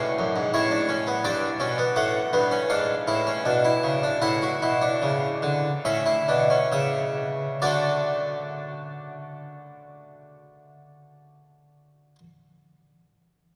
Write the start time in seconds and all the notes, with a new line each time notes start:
Already playing: C#4 E5
0.19 F#2
0.36 G#2
0.54 A2 E4 C#5
0.71 D4
0.89 C#4
1.07 B3
1.24 G2 D4 D5
1.60 B2 C#4
1.78 B3
1.96 A2 A3 F#5
2.33 G2 B3
2.51 C#4
2.70 G#2 D4 F5
3.08 A2 E4
3.27 C#4
3.45 B2 D4
3.65 E4
3.83 C#3
4.03 D4
4.22 A2 E4 F#5
4.42 F#4
4.62 B2 E4
4.82 D4
5.02 C#3
5.43 D3
5.85 A2 C#4 E5
6.06 E4
6.28 B2 D4
6.50 C#4
6.72 C#3 E5
7.62 D3 A3 D4 F#4 D5